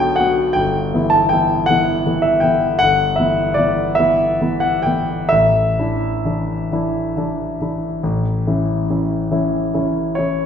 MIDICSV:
0, 0, Header, 1, 2, 480
1, 0, Start_track
1, 0, Tempo, 747198
1, 361, Time_signature, 12, 3, 24, 8
1, 1804, Tempo, 772201
1, 2284, Tempo, 826446
1, 2764, Tempo, 914634
1, 4204, Tempo, 864553
1, 6040, End_track
2, 0, Start_track
2, 0, Title_t, "Grand piano"
2, 0, Program_c, 0, 0
2, 0, Control_c, 0, 64, 127
2, 0, Note_on_c, 0, 35, 73
2, 0, Note_on_c, 0, 50, 52
2, 0, Note_on_c, 0, 59, 53
2, 0, Note_on_c, 0, 66, 56
2, 0, Note_on_c, 0, 79, 89
2, 0, Note_on_c, 0, 81, 89
2, 100, Note_off_c, 0, 50, 0
2, 101, Note_on_c, 0, 78, 91
2, 102, Note_off_c, 0, 59, 0
2, 103, Note_off_c, 0, 66, 0
2, 115, Note_off_c, 0, 79, 0
2, 124, Note_on_c, 0, 50, 46
2, 126, Note_on_c, 0, 66, 55
2, 127, Note_on_c, 0, 59, 49
2, 338, Note_off_c, 0, 50, 0
2, 339, Note_off_c, 0, 59, 0
2, 339, Note_off_c, 0, 66, 0
2, 341, Note_on_c, 0, 79, 93
2, 350, Note_off_c, 0, 78, 0
2, 360, Note_on_c, 0, 31, 68
2, 372, Control_c, 0, 64, 0
2, 373, Note_off_c, 0, 35, 0
2, 373, Note_off_c, 0, 81, 0
2, 461, Control_c, 0, 64, 127
2, 594, Note_off_c, 0, 31, 0
2, 604, Note_on_c, 0, 52, 50
2, 606, Note_on_c, 0, 59, 47
2, 613, Note_on_c, 0, 64, 53
2, 706, Note_on_c, 0, 81, 89
2, 712, Note_off_c, 0, 79, 0
2, 819, Note_off_c, 0, 52, 0
2, 819, Note_off_c, 0, 59, 0
2, 823, Note_off_c, 0, 64, 0
2, 829, Note_on_c, 0, 79, 85
2, 833, Note_off_c, 0, 81, 0
2, 851, Note_on_c, 0, 52, 43
2, 851, Note_on_c, 0, 59, 46
2, 855, Note_on_c, 0, 64, 49
2, 1061, Note_off_c, 0, 52, 0
2, 1061, Note_off_c, 0, 59, 0
2, 1063, Note_off_c, 0, 64, 0
2, 1067, Note_on_c, 0, 78, 96
2, 1073, Note_off_c, 0, 79, 0
2, 1087, Note_on_c, 0, 52, 49
2, 1092, Note_on_c, 0, 59, 49
2, 1093, Note_on_c, 0, 64, 55
2, 1299, Note_off_c, 0, 52, 0
2, 1301, Note_off_c, 0, 59, 0
2, 1302, Note_off_c, 0, 64, 0
2, 1323, Note_on_c, 0, 52, 50
2, 1327, Note_on_c, 0, 59, 48
2, 1329, Note_on_c, 0, 64, 51
2, 1426, Note_on_c, 0, 76, 77
2, 1434, Note_off_c, 0, 78, 0
2, 1540, Note_off_c, 0, 52, 0
2, 1541, Note_off_c, 0, 59, 0
2, 1543, Note_off_c, 0, 64, 0
2, 1543, Note_on_c, 0, 79, 78
2, 1555, Note_off_c, 0, 76, 0
2, 1563, Note_on_c, 0, 52, 43
2, 1565, Note_on_c, 0, 59, 45
2, 1569, Note_on_c, 0, 64, 52
2, 1781, Note_off_c, 0, 52, 0
2, 1782, Note_off_c, 0, 59, 0
2, 1784, Note_off_c, 0, 64, 0
2, 1790, Note_on_c, 0, 78, 101
2, 1795, Note_off_c, 0, 79, 0
2, 1811, Note_on_c, 0, 31, 61
2, 1815, Control_c, 0, 64, 0
2, 1932, Control_c, 0, 64, 127
2, 2021, Note_on_c, 0, 76, 72
2, 2034, Note_off_c, 0, 78, 0
2, 2037, Note_off_c, 0, 31, 0
2, 2040, Note_on_c, 0, 52, 44
2, 2046, Note_on_c, 0, 59, 45
2, 2047, Note_on_c, 0, 64, 50
2, 2259, Note_off_c, 0, 52, 0
2, 2260, Note_on_c, 0, 74, 83
2, 2262, Note_off_c, 0, 59, 0
2, 2263, Note_off_c, 0, 64, 0
2, 2274, Note_off_c, 0, 76, 0
2, 2284, Note_on_c, 0, 52, 44
2, 2285, Note_on_c, 0, 59, 45
2, 2288, Note_on_c, 0, 64, 51
2, 2496, Note_off_c, 0, 52, 0
2, 2496, Note_off_c, 0, 59, 0
2, 2497, Note_off_c, 0, 64, 0
2, 2499, Note_on_c, 0, 76, 89
2, 2508, Note_off_c, 0, 74, 0
2, 2520, Note_on_c, 0, 52, 43
2, 2522, Note_on_c, 0, 59, 46
2, 2527, Note_on_c, 0, 64, 51
2, 2741, Note_off_c, 0, 52, 0
2, 2742, Note_off_c, 0, 59, 0
2, 2745, Note_off_c, 0, 64, 0
2, 2765, Note_on_c, 0, 52, 49
2, 2770, Note_on_c, 0, 59, 45
2, 2771, Note_on_c, 0, 64, 45
2, 2866, Note_on_c, 0, 78, 81
2, 2870, Note_off_c, 0, 76, 0
2, 2975, Note_off_c, 0, 52, 0
2, 2977, Note_off_c, 0, 59, 0
2, 2978, Note_off_c, 0, 64, 0
2, 2983, Note_on_c, 0, 79, 80
2, 2989, Note_off_c, 0, 78, 0
2, 3002, Note_on_c, 0, 52, 44
2, 3006, Note_on_c, 0, 59, 37
2, 3006, Note_on_c, 0, 64, 46
2, 3217, Note_off_c, 0, 52, 0
2, 3219, Note_off_c, 0, 59, 0
2, 3219, Note_off_c, 0, 64, 0
2, 3226, Note_on_c, 0, 76, 90
2, 3229, Note_off_c, 0, 79, 0
2, 3243, Note_on_c, 0, 33, 69
2, 3245, Control_c, 0, 64, 0
2, 3337, Control_c, 0, 64, 127
2, 3477, Note_off_c, 0, 33, 0
2, 3490, Note_on_c, 0, 52, 43
2, 3491, Note_on_c, 0, 62, 46
2, 3493, Note_on_c, 0, 64, 52
2, 3711, Note_off_c, 0, 52, 0
2, 3711, Note_off_c, 0, 62, 0
2, 3712, Note_off_c, 0, 64, 0
2, 3732, Note_on_c, 0, 52, 42
2, 3736, Note_on_c, 0, 62, 43
2, 3737, Note_on_c, 0, 64, 40
2, 3951, Note_off_c, 0, 52, 0
2, 3952, Note_off_c, 0, 62, 0
2, 3953, Note_off_c, 0, 64, 0
2, 3979, Note_on_c, 0, 52, 48
2, 3982, Note_on_c, 0, 62, 47
2, 3984, Note_on_c, 0, 64, 51
2, 4188, Note_off_c, 0, 52, 0
2, 4190, Note_off_c, 0, 62, 0
2, 4191, Note_off_c, 0, 64, 0
2, 4214, Note_on_c, 0, 52, 43
2, 4218, Note_on_c, 0, 62, 44
2, 4219, Note_on_c, 0, 64, 45
2, 4429, Note_off_c, 0, 52, 0
2, 4431, Note_off_c, 0, 62, 0
2, 4432, Note_off_c, 0, 64, 0
2, 4460, Note_on_c, 0, 52, 39
2, 4462, Note_on_c, 0, 62, 42
2, 4465, Note_on_c, 0, 64, 45
2, 4668, Note_off_c, 0, 52, 0
2, 4669, Note_off_c, 0, 62, 0
2, 4671, Note_off_c, 0, 64, 0
2, 4694, Control_c, 0, 64, 0
2, 4695, Note_on_c, 0, 33, 64
2, 4798, Control_c, 0, 64, 127
2, 4922, Note_off_c, 0, 33, 0
2, 4938, Note_on_c, 0, 52, 43
2, 4938, Note_on_c, 0, 61, 41
2, 4941, Note_on_c, 0, 64, 46
2, 5151, Note_off_c, 0, 52, 0
2, 5151, Note_off_c, 0, 61, 0
2, 5152, Note_off_c, 0, 64, 0
2, 5177, Note_on_c, 0, 61, 41
2, 5178, Note_on_c, 0, 52, 40
2, 5181, Note_on_c, 0, 64, 43
2, 5385, Note_off_c, 0, 61, 0
2, 5386, Note_off_c, 0, 52, 0
2, 5388, Note_off_c, 0, 64, 0
2, 5398, Note_off_c, 0, 76, 0
2, 5405, Note_on_c, 0, 52, 44
2, 5406, Note_on_c, 0, 61, 42
2, 5410, Note_on_c, 0, 64, 53
2, 5619, Note_off_c, 0, 52, 0
2, 5619, Note_off_c, 0, 61, 0
2, 5621, Note_off_c, 0, 64, 0
2, 5644, Note_on_c, 0, 52, 43
2, 5644, Note_on_c, 0, 61, 43
2, 5646, Note_on_c, 0, 64, 45
2, 5865, Note_off_c, 0, 52, 0
2, 5865, Note_off_c, 0, 61, 0
2, 5866, Note_off_c, 0, 64, 0
2, 5870, Note_on_c, 0, 73, 77
2, 5888, Note_on_c, 0, 52, 40
2, 5890, Note_on_c, 0, 61, 39
2, 5892, Note_on_c, 0, 64, 45
2, 6040, Note_off_c, 0, 52, 0
2, 6040, Note_off_c, 0, 61, 0
2, 6040, Note_off_c, 0, 64, 0
2, 6040, Note_off_c, 0, 73, 0
2, 6040, End_track
0, 0, End_of_file